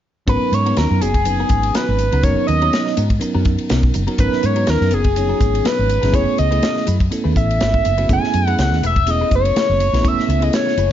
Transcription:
0.27 G#1 F#3 B3 C#4 D#4 F#4 A#4 B4, kick, hi-hat pedal, ride
0.41 muted clean electric guitar stroke
0.52 G#2 C#5, muted clean electric guitar stroke, hi-hat pedal, ride
0.65 F#3 B3 C#4 D#4 F#4 A#4, ride
0.77 D#2 A#4, snare, hi-hat pedal, ride
0.91 F#2, muted clean electric guitar stroke
1.01 F#1 B3 C#4 D#4 F#4 G#4 A#4, hi-hat pedal, ride
1.14 kick, ride
1.24 F#3 B3 C#4 D#4 B4, muted clean electric guitar stroke, hi-hat pedal, ride
1.40 B3 C#4 F#4 A#4
1.49 G#1, kick, hi-hat pedal, ride
1.63 ride
1.75 B3 C#4 F#4 A#4 B4, snare, hi-hat pedal, ride
1.89 G#1, muted clean electric guitar stroke
1.99 muted clean electric guitar stroke, hi-hat pedal, ride
2.11 C#2 F#3 B3 C#4 D#4 F#4 A#4, ride
2.23 F#1 F#3 B3 C#4 D#4 A#4 C#5, kick, hi-hat pedal, ride
2.37 muted clean electric guitar stroke
2.47 D#2 D#5, muted clean electric guitar stroke, hi-hat pedal, ride
2.61 F#3 B3 C#4 D#4 F#4 A#4 C#5, ride
2.73 snare, hi-hat pedal, ride
2.85 muted clean electric guitar stroke, snare
2.95 G#2 B3 C#4 D#4 F#4 A#4, hi-hat pedal, ride
3.10 muted clean electric guitar stroke, kick, ride
3.19 F#3 B3 C#4 D#4 A#4, muted clean electric guitar stroke, muted fretless electric bass stroke, hi-hat pedal, ride
3.35 F#2 B3 C#4 F#4 A#4
3.45 kick, hi-hat pedal, ride
3.58 ride
3.70 B1 B3 C#4 F#4 A#4, snare, hi-hat pedal, ride
3.83 kick
3.94 F#1, muted clean electric guitar stroke, hi-hat pedal, ride
4.07 F#3 B3 C#4 D#4 F#4 A#4, ride
4.18 G#1 F#3 B3 C#4 D#4 A#4 B4, kick, hi-hat pedal, ride
4.32 muted clean electric guitar stroke, muted fretless electric bass stroke, snare
4.43 G#2 C#5, muted clean electric guitar stroke, hi-hat pedal, ride
4.55 F#3 B3 C#4 D#4 F#4 A#4 B4, ride
4.67 D#2 A#4, snare, hi-hat pedal, ride
4.81 F#2, muted clean electric guitar stroke, snare
4.91 F#1 B3 C#4 F#4 G#4 A#4, hi-hat pedal, ride
5.04 muted clean electric guitar stroke, kick, ride
5.16 F#3 B3 C#4 D#4 C#5, muted clean electric guitar stroke, hi-hat pedal, ride
5.29 B3 C#4 F#4 A#4
5.41 G#1, kick, hi-hat pedal, ride
5.55 ride
5.64 B3 C#4 F#4 A#4 B4, snare, hi-hat pedal, ride
5.77 G#1, muted clean electric guitar stroke
5.89 muted clean electric guitar stroke, hi-hat pedal, ride
6.01 G#1 F#3 B3 C#4 D#4 F#4 G#4 A#4, snare, ride
6.12 F#1 A3 B3 C#4 E4 G#4 B4 C#5, kick, hi-hat pedal, ride
6.27 muted clean electric guitar stroke
6.38 C#2 D#5, muted clean electric guitar stroke, hi-hat pedal, ride
6.51 A3 B3 C#4 E4 G#4 B4, ride
6.63 snare, hi-hat pedal, ride
6.76 muted clean electric guitar stroke, snare
6.86 F#2 A3 E4 G#4 B4, hi-hat pedal, ride
7.00 muted clean electric guitar stroke, kick, ride
7.10 A3 B3 C#4 E4 A4, muted clean electric guitar stroke, muted fretless electric bass stroke, hi-hat pedal, ride
7.24 D#2 A3 E4 G#4 B4
7.35 A1 E5, muted clean electric guitar stroke, kick, hi-hat pedal, ride
7.51 ride
7.60 G#1 A3 E4 G#4 B4, snare, hi-hat pedal, ride
7.74 muted clean electric guitar stroke, kick
7.85 F#1, muted clean electric guitar stroke, hi-hat pedal, ride
7.97 A3 B3 C#4 E4 F#4 G#4 B4, ride
8.09 F#1 A3 B3 C#4 E4 G#4, kick, hi-hat pedal, ride
8.13 G#5
8.23 muted clean electric guitar stroke, muted fretless electric bass stroke, snare
8.34 F#2, muted clean electric guitar stroke, hi-hat pedal, ride
8.47 A3 B3 C#4 E4 G#4 B4 F#5, ride
8.59 C#2 F#5, snare, hi-hat pedal, ride
8.71 D#2, muted clean electric guitar stroke, snare
8.82 E1 A3 E4 G#4 A4 B4, hi-hat pedal, ride
8.86 E5
8.96 muted clean electric guitar stroke, kick, ride
9.07 A3 B3 C#4 E4 G#4 D#5, muted clean electric guitar stroke, hi-hat pedal, ride
9.21 A3 E4 G#4 B4
9.31 F#1, kick, hi-hat pedal, ride
9.35 C#5
9.45 ride
9.56 A3 E4 G#4 B4, muted fretless electric bass stroke, snare, hi-hat pedal, ride
9.69 F#1, muted clean electric guitar stroke
9.80 muted clean electric guitar stroke, hi-hat pedal, ride
9.92 B1 A3 B3 C#4 E4 G#4 B4, snare, ride
10.02 E1 A3 B3 C#4 E4 A4, kick, hi-hat pedal, ride
10.08 E5
10.19 muted clean electric guitar stroke, snare
10.28 C#2, muted clean electric guitar stroke, hi-hat pedal, ride
10.39 A3 B3 C#4 E4 G#4 B4, ride
10.43 A3 D#5
10.53 C#5, snare, hi-hat pedal, ride
10.66 muted clean electric guitar stroke, snare
10.76 F#1 A3 E4 G#4 B4, hi-hat pedal, ride

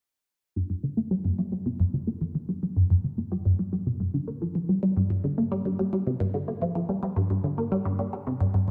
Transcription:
0.56 G2
0.70 G2
0.84 D3
0.97 A#3
1.11 G3
1.25 G2
1.39 G3
1.52 G3
1.66 C3
1.80 G2
1.94 D3
2.07 A#3
2.21 F3
2.35 F3
2.49 G3
2.63 G3
2.76 G2
2.90 G2
3.04 D3
3.18 A#3
3.32 G3
3.45 G2
3.59 G3
3.73 G3
3.87 C3
4.00 G2
4.14 D3
4.28 A#3
4.42 F3
4.55 F3
4.69 G3
4.83 G3
4.97 G2
5.10 G2
5.24 D3
5.38 A#3
5.52 G3
5.65 G2
5.79 G3
5.93 G3
6.07 C3
6.20 G2
6.34 D3
6.48 A#3
6.62 F3
6.75 F3
6.89 G3
7.03 G3
7.16 G2
7.30 G2
7.44 D3
7.58 A#3
7.72 G3
7.85 G2
7.99 G3
8.13 G3
8.27 C3
8.41 G2
8.54 G2

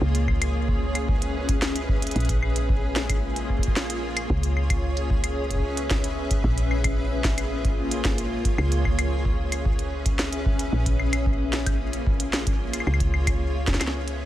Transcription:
Already playing: G#4 C#5
0.01 C#2 C#4
0.15 closed hi-hat
0.28 kick, claves
0.42 B4, closed hi-hat, claves
0.68 E5, kick
0.95 closed hi-hat, claves
1.09 kick
1.22 closed hi-hat
1.49 kick, closed hi-hat
1.62 snare
1.76 closed hi-hat
1.89 kick
2.02 closed hi-hat
2.07 closed hi-hat
2.11 closed hi-hat
2.16 A#1 A#3, closed hi-hat
2.20 closed hi-hat
2.25 closed hi-hat
2.29 F4, kick, closed hi-hat
2.43 claves
2.56 closed hi-hat
2.69 kick
2.76 C#5
2.96 snare
3.09 kick, closed hi-hat, claves
3.36 closed hi-hat
3.50 kick
3.59 kick
3.63 closed hi-hat
3.67 kick
3.76 snare
3.90 closed hi-hat
4.17 closed hi-hat, claves
4.30 C#2 C#4, kick
4.43 closed hi-hat
4.57 claves
4.70 kick, closed hi-hat, claves
4.77 E5
4.87 B4
4.97 closed hi-hat
5.10 kick
5.24 closed hi-hat, claves
5.50 kick, closed hi-hat
5.55 kick
5.59 kick
5.77 closed hi-hat
5.91 kick, snare
6.04 closed hi-hat
6.31 kick, closed hi-hat
6.44 A#1 A#3, kick
6.50 F4
6.58 closed hi-hat
6.71 claves
6.84 kick, closed hi-hat, claves
7.21 C#5, kick, snare
7.38 closed hi-hat, claves
7.65 kick, closed hi-hat
7.91 closed hi-hat
8.05 kick, snare
8.18 closed hi-hat
8.45 kick, closed hi-hat
8.58 C#2 C#4, claves
8.72 closed hi-hat
8.85 kick, claves
8.95 B4, closed hi-hat, claves
9.15 E5
9.25 kick
9.52 closed hi-hat, claves
9.65 kick
9.79 closed hi-hat
10.06 kick, closed hi-hat
10.19 snare
10.33 closed hi-hat
10.46 kick
10.59 closed hi-hat
10.73 A#1 A#3
10.86 kick, closed hi-hat
10.99 F4, claves
11.13 closed hi-hat, claves
11.26 kick
11.53 snare
11.60 C#5
11.66 kick, closed hi-hat, claves
11.93 closed hi-hat
12.07 kick
12.20 closed hi-hat
12.33 snare
12.47 kick, closed hi-hat
12.73 closed hi-hat, claves
12.80 claves
12.87 C#2 C#4, claves
12.94 claves
13.00 kick, closed hi-hat
13.06 G#4
13.14 E5, claves
13.27 kick, closed hi-hat, claves
13.32 B4
13.67 kick, snare
13.70 kick
13.72 kick, snare
13.76 kick
13.79 kick, snare, closed hi-hat, claves
13.87 snare
14.08 closed hi-hat

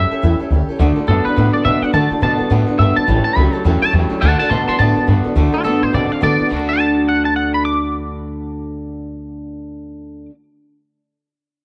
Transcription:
Already playing: G3 C#4 G4 A4 E5
0.11 G3 C#4 G4 A4, muted upright bass stroke
0.22 E2 A2 E3 G3 C#4 G4 A4
0.39 G3 C#4 G4 A4, muted upright bass stroke
0.51 D2 G3 C#4 G4 A4
0.68 C#4 G4 A4, muted upright bass stroke
0.72 G3
0.79 D2 D3 A3 D4 F#4 A4
0.96 D4 F#4 A4
1.07 F#2 D3 A3 B3 D4 F#4 A4
1.25 D4 F#4 A4 B4, muted upright bass stroke
1.36 A2 D3 A3 B3 D4 F#4 A4
1.53 D4 F#4 A4 D5, muted upright bass stroke
1.64 B2 D3 A3 B3 D4 F#4 A4 E5
1.82 D4 F#4 A4 F#5, muted upright bass stroke
1.93 D3 A3 D4 F#4 A4 A5
2.10 D4 F#4 A4, muted upright bass stroke
2.21 B2 D3 A3 B3 D4 F#4 A4 A5
2.38 D4 F#4 A4, muted upright bass stroke
2.50 A2 D3 A3 B3 D4 F#4 A4
2.67 D4 F#4 A4, muted upright bass stroke
2.78 G2 D3 A3 B3 D4 F#4 A4 E5
2.96 D4 F#4 A4 A5, muted upright bass stroke
3.07 A1 A2 E3 G3 C#4 G4 A4
3.24 C#4 G4 A4 A5
3.28 G3
3.35 C#2 A2 F#3 G3 C#4 G4 A4 B5
3.53 G3 C#4 G4 A4 A5
3.64 E2 A2 E3 F#3 G3 C#4 G4 A4
3.82 G3 C#4 G4 A5, muted upright bass stroke
3.92 E2 A2 F#3 G3 C#4 G4 A4
4.10 G3 C#4 G4 A4, muted upright bass stroke
4.21 D2 D3 A3 D4 F#4 A4 F#5 A5
4.38 F#4 A4 F#5 A5
4.42 D4
4.49 B2 D3 A3 B3 D4 F#4 A4 A5 C6
4.68 D4 F#4 A4 A5 C6, muted upright bass stroke
4.79 A2 D3 A3 B3 D4 F#4 A4 A5
4.96 D4 F#4 A4, muted upright bass stroke
5.07 G2 D3 A3 B3 D4 F#4 A4
5.24 D4 F#4 A4, muted upright bass stroke
5.35 D2 D3 A3 D4 F#4 A4
5.53 D4 F4 F#4 A4
5.64 F#2 D3 A3 B3 D4 F#4 A4
5.83 A2 D4 F#4 C5
5.92 B2 D3 A3 C4 D4 F#4 A4 D5
6.10 D4 F#4 A4 F5, muted upright bass stroke
6.21 D3 A3 B3 D4 F#4 A4 D5
6.40 D4 F#4, muted upright bass stroke
6.46 D3 A3
6.51 D2 A3 D4 F#4
6.56 F#4 A4
6.69 F#5
6.80 A5
7.09 F#5
7.25 A5
7.36 F#5
7.54 B5
7.65 D6

